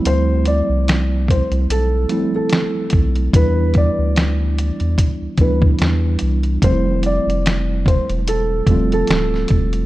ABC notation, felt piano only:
X:1
M:4/4
L:1/16
Q:"Swing 16ths" 1/4=73
K:Ddor
V:1 name="Felt piano"
c2 d2 z2 c z A3 A4- A | B2 d6 z2 B z4 z | c2 d2 z2 c z A3 A4- A |]